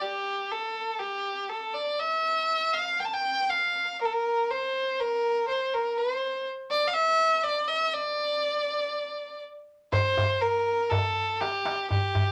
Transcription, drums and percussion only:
9.93 darbuka dum medium
10.17 darbuka dum medium
10.67 darbuka ka soft
10.91 darbuka dum medium
11.04 darbuka ka soft
11.17 darbuka ka soft
11.29 darbuka ka soft
11.41 darbuka tek medium
11.65 darbuka tek medium
11.91 darbuka dum medium
12.15 darbuka dum medium

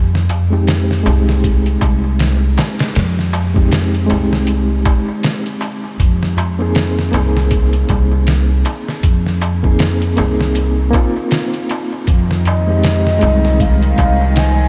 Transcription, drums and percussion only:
0.15 snare soft
0.29 closed hi-hat medium
0.29 darbuka tek medium
0.29 darbuka dum medium
0.53 darbuka tek soft
0.67 snare loud
0.67 closed hi-hat medium
0.67 darbuka tek soft
0.91 snare soft
1.06 closed hi-hat medium
1.06 darbuka tek medium
1.06 darbuka dum medium
1.28 snare soft
1.28 darbuka tek soft
1.44 kick loud
1.44 closed hi-hat medium
1.44 darbuka tek soft
1.66 closed hi-hat soft
1.81 kick medium
1.81 closed hi-hat medium
1.81 darbuka tek medium
2.04 darbuka tek soft
2.19 snare loud
2.19 closed hi-hat medium
2.19 darbuka tek soft
2.58 snare loud
2.58 closed hi-hat medium
2.58 darbuka tek medium
2.79 snare medium
2.79 closed hi-hat medium
2.79 darbuka tek soft
2.95 snare loud
2.95 closed hi-hat medium
2.95 darbuka tek soft
3.19 snare soft
3.33 closed hi-hat medium
3.33 darbuka tek medium
3.56 kick medium
3.56 darbuka tek soft
3.71 snare loud
3.71 closed hi-hat medium
3.71 darbuka tek soft
3.94 closed hi-hat soft
4.10 closed hi-hat medium
4.10 darbuka tek medium
4.10 darbuka dum medium
4.33 snare medium
4.33 darbuka tek soft
4.47 closed hi-hat medium
4.47 darbuka tek soft
4.85 kick medium
4.85 closed hi-hat medium
4.85 darbuka tek medium
5.08 darbuka tek soft
5.23 snare loud
5.23 closed hi-hat medium
5.23 darbuka tek soft
5.46 closed hi-hat soft
5.61 closed hi-hat medium
5.61 darbuka tek medium
5.84 darbuka tek soft
6.00 kick loud
6.00 closed hi-hat medium
6.00 darbuka tek soft
6.23 snare soft
6.37 closed hi-hat medium
6.37 darbuka tek loud
6.37 darbuka dum medium
6.60 darbuka tek soft
6.75 snare loud
6.75 closed hi-hat medium
6.75 darbuka tek soft
6.99 snare soft
7.13 closed hi-hat medium
7.13 darbuka tek loud
7.13 darbuka dum medium
7.37 snare soft
7.37 darbuka tek soft
7.51 kick medium
7.51 closed hi-hat medium
7.51 darbuka tek soft
7.73 closed hi-hat soft
7.89 kick medium
7.89 closed hi-hat medium
7.89 darbuka tek medium
8.11 darbuka tek soft
8.27 snare loud
8.27 closed hi-hat medium
8.27 darbuka tek soft
8.65 closed hi-hat medium
8.65 darbuka tek medium
8.88 snare soft
8.88 darbuka tek soft
9.03 kick loud
9.03 closed hi-hat medium
9.03 darbuka tek soft
9.26 snare soft
9.41 closed hi-hat medium
9.41 darbuka tek medium
9.64 kick medium
9.64 darbuka tek soft
9.79 snare loud
9.79 closed hi-hat medium
9.79 darbuka tek soft
10.02 closed hi-hat soft
10.17 closed hi-hat medium
10.17 darbuka tek medium
10.17 darbuka dum medium
10.40 snare medium
10.40 darbuka tek soft
10.55 closed hi-hat medium
10.55 darbuka tek soft
10.93 kick medium
10.93 closed hi-hat medium
10.93 darbuka tek loud
11.16 darbuka tek soft
11.31 snare loud
11.31 closed hi-hat medium
11.31 darbuka tek soft
11.54 closed hi-hat soft
11.69 closed hi-hat medium
11.69 darbuka tek medium
11.92 darbuka tek soft
12.07 kick loud
12.07 closed hi-hat medium
12.07 darbuka tek soft
12.31 snare soft
12.45 closed hi-hat medium
12.45 darbuka tek medium
12.45 darbuka dum medium
12.68 darbuka tek soft
12.83 snare loud
12.83 closed hi-hat medium
12.83 darbuka tek soft
13.07 snare soft
13.21 closed hi-hat medium
13.21 darbuka tek medium
13.21 darbuka dum medium
13.44 snare soft
13.44 darbuka tek soft
13.60 kick medium
13.60 closed hi-hat medium
13.60 darbuka tek soft
13.82 closed hi-hat soft
13.98 kick medium
13.98 closed hi-hat medium
13.98 darbuka tek medium
14.21 darbuka tek soft
14.36 snare loud
14.36 closed hi-hat medium
14.36 darbuka tek soft

